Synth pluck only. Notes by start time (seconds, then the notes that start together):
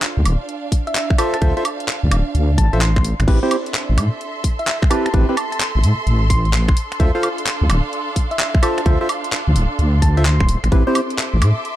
0.87 E5
0.95 E5
1.18 A5
1.34 A5
2.58 A5
2.81 C6
2.96 C6
4.59 E5
4.67 E5
4.90 A5
5.06 A5
5.37 A5
5.52 A5
6.30 C6
6.53 C6
6.68 C6
8.31 E5
8.39 E5
8.62 A5
8.78 A5
10.02 A5
10.25 C6
10.41 C6